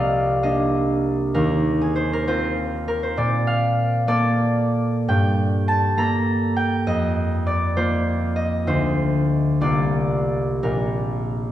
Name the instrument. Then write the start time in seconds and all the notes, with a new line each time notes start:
harp
Already playing: C2 A#3 C4 A#4 C5 D5 F5
0.43 A#3 D4 D#5
1.34 D#2 A#4
1.81 G#4
1.96 C5
2.13 A#4
2.27 C4 F4 C5
2.88 A#4
3.03 C5
3.17 A#2 D5
3.47 F5
4.07 A#3 A4 D5
5.08 G2 G5
5.68 A5
5.97 A#3 A4 A#5
6.56 G5
6.87 F2 D#5
7.47 D5
7.77 A#3 F4 C5
8.36 D#5
8.67 D2 A3 F4 C5
9.61 C2 A#3 F4 D5
10.63 A#1 A#4